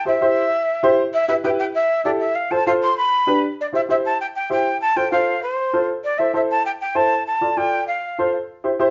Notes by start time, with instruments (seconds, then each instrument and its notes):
0.05 upright piano E4 G4 C5, flute E5
0.21 upright piano E4 G4 C5
0.83 upright piano E4 G4 C5
1.14 flute E5
1.28 upright piano E4 G4 B4, flute E5
1.44 upright piano E4 G4 B4, flute G5
1.59 flute G5
1.75 flute E5
2.05 upright piano E4 G4 A4, flute D5
2.20 flute E5
2.35 flute F5
2.51 upright piano F4 A4 C5, flute A5
2.67 upright piano F4 A4 C5, flute F5
2.82 flute C6
2.98 flute B5
3.27 upright piano D4 G4 B4
3.61 flute D5
3.73 upright piano E4 G4 C5, flute E5
3.89 upright piano E4 G4 C5, flute E5
4.06 flute A5
4.21 flute G5
4.36 flute G5
4.50 upright piano E4 G4 C5, flute G5
4.82 flute A5
4.96 upright piano F4 A4 C5, flute G5
5.12 upright piano F4 A4 C5, flute F5
5.43 flute C5
5.73 upright piano F4 A4 C5
6.04 flute D5
6.18 upright piano E4 A4 C5, flute E5
6.33 upright piano E4 A4 C5, flute E5
6.51 flute A5
6.66 flute G5
6.81 flute G5
6.95 upright piano E4 A4 C5, flute A5
7.27 flute A5
7.41 upright piano F4 A4 D5
7.57 upright piano F4 A4 D5, flute G5
7.88 flute F5
8.18 upright piano F4 A4 C5
8.64 upright piano E4 G4 C5
8.79 upright piano E4 G4 C5